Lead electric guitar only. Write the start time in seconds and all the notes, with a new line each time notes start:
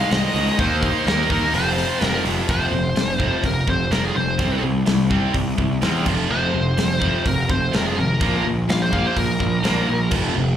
0.13 D#5
0.60 C5
1.08 A#4
1.32 A#4
1.55 C5
2.05 A#4
2.50 C5
3.45 A#4
3.70 C5
3.92 A#4
4.05 G#4
4.17 C5
6.31 C5
7.27 A#4
7.51 C5
7.76 A#4
7.86 G#4
8.00 A#4
8.70 F5
8.82 C5
8.93 F5
9.07 C5
9.17 A#4